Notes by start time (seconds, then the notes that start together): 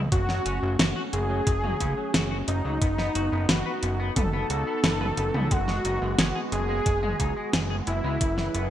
0.12 F#1 F#3 A3 C#4 F#4, kick, closed hi-hat
0.29 F#3, snare
0.46 F#1 C#4, closed hi-hat
0.62 F#1 F#3
0.79 F#1 F#4, snare, closed hi-hat
0.96 F#4
1.13 F#1 F#3 G#4, closed hi-hat
1.30 F#3
1.47 F#1 F#3, kick, closed hi-hat
1.64 F#3, mid tom
1.80 C#2 C#4, kick, closed hi-hat
1.97 F#3
2.14 F#1 F#4, snare, closed hi-hat
2.31 F#4
2.48 F#1 F#3 D#4, closed hi-hat
2.65 C#2 F#3
2.82 F#1 B3 D#4 F#4, kick, closed hi-hat
2.98 B3, snare
3.15 F#1 F#4, closed hi-hat
3.32 F#1 B3
3.49 F#1 F#4 B4, snare, closed hi-hat
3.66 B4
3.83 F#1 B3, closed hi-hat
4.00 B3
4.16 F#1 B3 A4, kick, closed hi-hat, mid tom
4.33 B3
4.50 C#2 F#4, closed hi-hat
4.67 B3
4.84 F#1 B4, snare, closed hi-hat
5.01 B4, mid tom
5.17 F#1 B3, closed hi-hat
5.34 C#2 B3, mid tom
5.51 F#1 G#3 F#4, kick, closed hi-hat
5.68 G#3, snare
5.85 F#1 D#4, closed hi-hat
6.02 F#1 G#3
6.19 F#1 G#4, snare, closed hi-hat
6.35 G#4
6.52 F#1 G#3 G#4, closed hi-hat
6.69 G#3
6.86 F#1 G#3, kick, closed hi-hat
7.03 G#3, mid tom
7.20 C#2 D#4, kick, closed hi-hat
7.37 G#3
7.53 F#1 G#4, snare, closed hi-hat
7.70 G#4
7.87 F#1 G#3 E4, closed hi-hat
8.04 C#2 G#3
8.21 F#1 E3 F#3 E4 G#4 B4, kick, closed hi-hat
8.38 E3, snare
8.54 F#1 B3, closed hi-hat